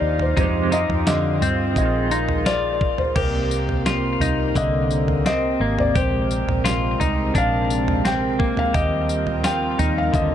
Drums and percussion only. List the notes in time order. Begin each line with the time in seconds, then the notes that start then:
0.19 floor tom
0.37 kick, floor tom, tambourine
0.72 tambourine
0.90 floor tom
1.07 snare, tambourine
1.42 floor tom, tambourine
1.76 kick, tambourine
2.11 tambourine
2.29 floor tom
2.46 snare, tambourine
2.81 kick
2.98 floor tom
3.16 kick, floor tom, crash, tambourine
3.51 tambourine
3.69 floor tom
3.86 snare, tambourine
4.21 floor tom, tambourine
4.55 kick, tambourine
4.91 tambourine
5.08 floor tom
5.26 snare, tambourine
5.79 floor tom
5.95 kick, floor tom, tambourine
6.31 tambourine
6.49 floor tom
6.66 snare, tambourine
7.01 floor tom, tambourine
7.35 kick, tambourine
7.70 tambourine
7.88 floor tom
8.05 snare, tambourine
8.40 kick
8.57 floor tom
8.74 kick, floor tom, tambourine
9.09 tambourine
9.27 floor tom
9.44 snare, tambourine
9.79 floor tom, tambourine
10.14 kick, tambourine